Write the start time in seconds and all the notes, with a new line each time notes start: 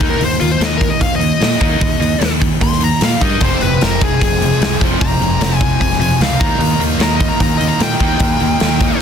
0.00 D#2 D#3 A#3 D#4, kick, open hi-hat
0.09 A#4
0.20 D#2 D#3 A#3, open hi-hat
0.24 C5
0.40 D#2 D#3 A#3 F4, open hi-hat
0.51 C5
0.60 D#2 D#3 A#3, snare, open hi-hat
0.65 D#5
0.77 D#3 A#3 A#4, kick, open hi-hat
0.90 D#5
0.99 D#2 D#3 A#3 F5, kick, open hi-hat
1.16 D#3 A#3 D#5
1.21 open hi-hat
1.40 A#2 D#3 A#3, snare, open hi-hat
1.61 D#2 D#3 A#3 D#4, kick, open hi-hat
1.79 D#2 D#3 A#3, kick, open hi-hat
2.00 D#2 D#3 A#3, open hi-hat
2.21 D#2 D#3 A#3, snare, open hi-hat
2.41 D#3 A#3, kick, open hi-hat
2.61 D#2 D#3 A#3 C6, kick, open hi-hat
2.72 snare
2.81 D#3 A#3 A#5, open hi-hat
3.01 A#2 D#3 A#3 F5, snare, open hi-hat
3.21 G2 D#3 A#3 D#4 D#5, kick, open hi-hat
3.40 F1 F2 C3 F3 G#3 C4 C5 G5, kick, open hi-hat
3.61 F1 F2 C3 B4, open hi-hat
3.81 F1 F2 C3 A#4, snare, open hi-hat
4.01 F2 C3 F3 G#3 C4 G#4, kick, open hi-hat
4.21 F1 F2 C3, kick, open hi-hat
4.42 F2 C3, open hi-hat
4.61 C2 F2 C3, snare, open hi-hat
4.81 F1 F2 C3 F3, kick, open hi-hat
5.01 F1 F2 C3 F3 G#3 C4 A#5, kick, open hi-hat
5.22 F1 F2 C3, open hi-hat
5.41 F1 F2 C3, snare, open hi-hat
5.56 G#5
5.60 F2 C3 F3 G#3 C4, kick, open hi-hat
5.81 F1 F2 C3 G#5, kick, open hi-hat
5.93 snare
6.01 F2 C3 G#5, open hi-hat
6.20 C#2 F2 C3 F5, snare, open hi-hat
6.36 D#3 D#4 A#4 F5 A#5
6.41 D#2 G3 A#3 D#4, kick, open hi-hat
6.59 D#2 D#3 A#3, open hi-hat
6.79 D#2 D#3 A#3, open hi-hat
6.99 D#2 D#3 G3 A#3 A#5, snare, open hi-hat
7.03 D#4
7.16 D#3 D#5
7.20 A#3, kick, open hi-hat
7.29 A#5
7.40 D#2 D#3 A#3 A#5, kick, open hi-hat
7.57 D#3 A#3 D#5, open hi-hat
7.68 A#5
7.79 A#2 D#3 A#3 G5, snare, open hi-hat
7.99 D#2 D#3 G3 A#3 D#4, kick, open hi-hat
8.05 D#4
8.20 D#2 D#3 A#3, kick, open hi-hat
8.40 D#2 D#3 A#3, open hi-hat
8.60 D#2 D#3 G3 A#3 D#4, snare, open hi-hat
8.80 D#3 A#3, kick, open hi-hat